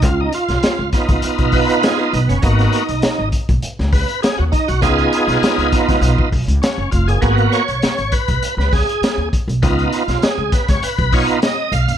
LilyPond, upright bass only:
\new Staff \with { instrumentName = "Upright bass" } { \clef bass \time 4/4 \key cis \mixolydian \tempo 4 = 100 cis,8 r16 b,,16 r16 cis,16 r16 cis,16 r16 b,,8 r8. b,,16 fis,,16 | gis,,8 r16 b,,16 r16 gis,,16 r16 b,,16 r16 cis,8 r8 dis,16 r16 b,,16 | cis,8 r16 b,,16 r16 cis,16 r16 cis,16 b,,16 r16 b,,16 cis,16 r16 fis,,16 eis,,16 fis,,16 | gis,,8 r16 b,,16 r16 gis,,16 r16 b,,16 r16 cis,8 r8 dis,16 r16 b,,16 |
cis,8 r16 b,,16 r16 cis,16 r16 cis,16 r16 b,,8 r8. b,,16 fis,,16 | }